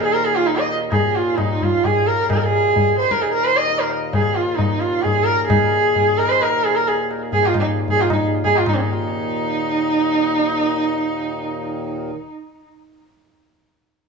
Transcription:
Already playing: harmonium D#2 A#2
0.00 sarangi G#4, tabla na
0.13 sarangi A#4
0.25 sarangi G#4
0.36 sarangi F4
0.45 sarangi D#4, tabla tin
0.58 sarangi D#5
0.69 tabla na
0.91 sarangi G#4, tabla na, tabla ge
1.16 sarangi F4
1.38 sarangi D#4, tabla na, tabla ge
1.62 sarangi F4, tabla ge
1.84 sarangi G#4, tabla tin, tabla ge
2.07 sarangi A#4
2.30 sarangi G#4, tabla na, tabla ge
2.37 sarangi A#4
2.44 sarangi G#4
2.76 tabla tin, tabla ge
2.99 sarangi C5, tabla na
3.11 sarangi A#4, tabla ke
3.22 sarangi G#4, tabla na
3.34 sarangi A#4
3.45 sarangi C5
3.57 sarangi D#5
3.67 tabla tin
3.80 sarangi A#4
3.90 tabla na
4.13 sarangi G#4, tabla na, tabla ge
4.36 sarangi F4
4.57 sarangi D#4, tabla na, tabla ge
4.80 sarangi F4, tabla te
5.02 sarangi G#4, tabla tin, tabla ge
5.24 sarangi A#4
5.47 sarangi G#4, tabla na, tabla ge
5.95 tabla tin, tabla ge
6.17 sarangi A#4, tabla na
6.28 sarangi C5 D#5
6.42 sarangi A#4, tabla na
6.65 sarangi G#4
6.76 sarangi A#4
6.88 sarangi G#4, tabla tin
7.11 tabla na
7.32 sarangi G#4, tabla tin, tabla ge
7.43 sarangi F4, tabla na
7.54 tabla na, tabla ge
7.59 sarangi D#4
7.88 sarangi G#4, tabla tin, tabla ge
7.99 sarangi F4, tabla na
8.10 sarangi D#4, tabla na, tabla ge
8.44 sarangi G#4, tabla tin, tabla ge
8.55 sarangi F4, tabla na
8.66 harmonium D#2 A#2, sarangi D#4, tabla na, tabla ge
8.75 sarangi C4
8.81 sarangi D#4

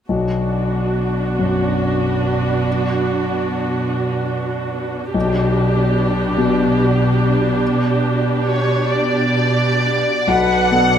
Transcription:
0.09 grand piano B1, cello section B2, viola section D4 F#4
1.39 grand piano F#2
5.13 grand piano B1, cello section B2, viola section D4 G4
6.37 grand piano B2
8.47 violin section C#5
8.91 violin section D5
10.27 grand piano B1, cello section B2, viola section D4 B4, violin section F#5
10.71 grand piano B3, viola section A4

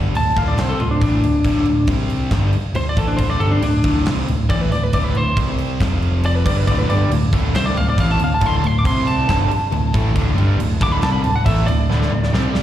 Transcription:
Already playing: picked electric bass G1, distorted electric guitar G2 D3 G3
0.15 picked electric bass D1, distorted electric guitar D2 A2, lead electric guitar A5, crash
0.36 picked electric bass D1, distorted electric guitar D2 A2 D3, lead electric guitar F5, kick, crash
0.48 lead electric guitar D5
0.57 picked electric bass C2, distorted electric guitar C3 G3 C4, lead electric guitar C5, snare, crash
0.69 lead electric guitar A4
0.80 picked electric bass D1, distorted electric guitar D2 A2, lead electric guitar F4, crash
0.91 lead electric guitar D4
1.01 picked electric bass A1, distorted electric guitar A2 E3 A3, lead electric guitar D4, kick, crash
1.23 picked electric bass D1, distorted electric guitar D2 A2, crash
1.44 picked electric bass D1, distorted electric guitar D2 A2 D3, kick, crash
1.65 picked electric bass D1, distorted electric guitar D2 A2, crash
1.87 picked electric bass C2, distorted electric guitar C3 G3 C4, kick, crash
2.10 crash
2.31 picked electric bass G1, distorted electric guitar G2 D3 G3, kick, snare, crash
2.53 crash
2.74 picked electric bass D1, distorted electric guitar D2 A2, lead electric guitar C5, crash
2.89 lead electric guitar D5
2.96 picked electric bass A1, distorted electric guitar A2 E3 A3, lead electric guitar A4, kick, crash
3.07 lead electric guitar D4
3.17 picked electric bass D1, distorted electric guitar D2 A2 D3, lead electric guitar C5, kick, crash
3.30 lead electric guitar D5
3.40 picked electric bass G1, distorted electric guitar G2 D3 G3, lead electric guitar A4, crash
3.51 lead electric guitar D4
3.61 picked electric bass D1, distorted electric guitar D2 A2, lead electric guitar D4, crash
3.84 picked electric bass D1, distorted electric guitar D2 A2 D3, kick, crash
4.06 picked electric bass C2, distorted electric guitar C3 G3 C4, snare, crash
4.27 picked electric bass D1, distorted electric guitar D2 A2, crash
4.49 picked electric bass A1, distorted electric guitar A2 E3 A3, lead electric guitar D5, kick, crash
4.61 lead electric guitar B4
4.71 picked electric bass D1, distorted electric guitar D2 A2, lead electric guitar D5, snare, crash
4.84 lead electric guitar B4
4.93 picked electric bass D1, distorted electric guitar D2 A2 D3, lead electric guitar D5, kick, crash
5.04 lead electric guitar B4
5.15 picked electric bass D1, distorted electric guitar D2 A2, lead electric guitar C5, crash
5.36 picked electric bass C2, distorted electric guitar C3 G3 C4, kick, crash
5.58 crash
5.80 picked electric bass F1, distorted electric guitar F2 C3 F3, kick, snare, crash
6.02 crash
6.23 lead electric guitar D5, crash
6.35 lead electric guitar B4
6.45 picked electric bass G1, distorted electric guitar G2 D3 G3, lead electric guitar D5, kick, crash
6.57 lead electric guitar B4
6.67 picked electric bass D1, distorted electric guitar D2 A2 D3, lead electric guitar D5, kick, crash
6.78 lead electric guitar B4
6.88 picked electric bass G1, distorted electric guitar G2 D3 G3, lead electric guitar D5, crash
7.10 picked electric bass D1, distorted electric guitar D2 A2, crash
7.32 picked electric bass D1, distorted electric guitar D2 A2 D3, kick, crash
7.54 picked electric bass C2, distorted electric guitar C3 G3 C4, lead electric guitar C5, snare, crash
7.66 lead electric guitar D5
7.75 picked electric bass D1, distorted electric guitar D2 A2, lead electric guitar F5, crash
7.89 lead electric guitar D5
7.98 picked electric bass A1, distorted electric guitar A2 E3 A3, lead electric guitar F5, kick, crash
8.11 lead electric guitar A5
8.19 picked electric bass D1, distorted electric guitar D2 A2, crash
8.24 lead electric guitar F5
8.34 lead electric guitar A5
8.41 picked electric bass D1, distorted electric guitar D2 A2 D3, kick, crash
8.46 lead electric guitar C6
8.56 lead electric guitar A5
8.62 picked electric bass D1, distorted electric guitar D2 A2, crash
8.67 lead electric guitar C6
8.79 lead electric guitar D6
8.84 picked electric bass C2, distorted electric guitar C3 G3 C4, lead electric guitar C6, kick, crash
9.07 lead electric guitar A5, crash
9.27 picked electric bass G1, distorted electric guitar G2 D3 G3, kick, snare, crash
9.51 crash
9.72 picked electric bass D1, distorted electric guitar D2 A2, crash
9.93 picked electric bass A1, distorted electric guitar A2 E3 A3, kick, crash
10.14 picked electric bass D1, distorted electric guitar D2 A2 D3, kick, crash
10.36 picked electric bass G1, distorted electric guitar G2 D3 G3, crash
10.59 picked electric bass D1, distorted electric guitar D2 A2, crash
10.80 picked electric bass D1, distorted electric guitar D2 A2 D3, lead electric guitar D6, kick, crash
10.92 lead electric guitar B5
11.02 picked electric bass C2, distorted electric guitar C3 G3 C4, lead electric guitar A5, snare, crash
11.12 lead electric guitar B5
11.22 picked electric bass D1, distorted electric guitar D2 A2, lead electric guitar A5, crash
11.36 lead electric guitar F#5
11.46 picked electric bass A1, distorted electric guitar A2 E3 A3, lead electric guitar E5, kick, crash
11.66 picked electric bass D1, distorted electric guitar D2 A2, lead electric guitar D5, crash
11.90 picked electric bass D1, distorted electric guitar D2 A2 D3, snare
12.02 snare
12.11 picked electric bass D1, distorted electric guitar D2 A2
12.24 snare
12.33 picked electric bass C2, distorted electric guitar C3 G3 C4, snare
12.55 snare

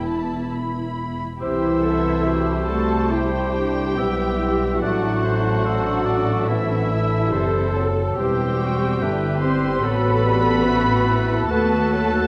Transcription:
Already playing: double bass section E1, cello section E2, clarinet E4, viola section E4, violin section B5
0.04 violin section A5
0.51 violin section B5
1.39 double bass section C2, french horn section E3, bassoon C4, violin section C4 E4 E5, clarinet E4, viola section E4, cello section G4, oboe C5, flute E6
1.82 violin section A3, bassoon B3, cello section A4
2.25 bassoon A3, clarinet F#4, cello section G4, oboe C5
2.68 bassoon G3, french horn section A3, cello section F#4, viola section A4, violin section A5
3.10 french horn section G3, bassoon C4, cello section E4, clarinet E4, violin section E4 G5, viola section G4, flute C6
3.54 cello section D4, flute D6
3.96 double bass section B1, violin section B3 G4, bassoon B3, cello section C4, clarinet E4, oboe E5, flute E6
4.39 violin section C4, cello section E4, clarinet G4
4.81 double bass section A1, french horn section F#3, bassoon A3, violin section D4 A4 F#5, viola section F#4, clarinet A4, oboe D5, flute F#6
5.24 violin section A4, oboe C5
5.64 bassoon A3, cello section D4, oboe C5, flute E6
6.06 oboe D5
6.47 french horn section E3, bassoon B3, cello section C4, viola section E4, violin section F#4 E5, oboe E5, flute E6
6.88 bassoon A3, violin section E4, cello section E4
7.30 double bass section F#1, bassoon G3, violin section C4 A4, cello section A4, clarinet A4, oboe C5
7.75 bassoon F#3
8.16 double bass section E1, bassoon E3, french horn section G3, violin section C4 G4 G5, clarinet G4, cello section G4, viola section G4, oboe C5
8.59 cello section F#4
8.99 double bass section G1, bassoon A3, violin section D4 G4, clarinet E4, cello section E4, oboe B4
9.40 bassoon G3, french horn section C4, violin section C4 C6, cello section G4, viola section C5
9.80 double bass section A1, french horn section B3, violin section C4 F#4 B5, clarinet F#4, cello section A4, oboe A4, viola section B4
9.85 bassoon F#3
10.24 bassoon G3
10.65 bassoon A3, clarinet F#4, cello section F#4, flute F#6
11.06 cello section E4, flute F#6
11.47 double bass section D#2, french horn section A3, violin section B3 F#4 A5, bassoon B3, clarinet F#4, cello section F#4, viola section A4, oboe B4, flute F#6
11.89 bassoon F#3, violin section A3, cello section A4

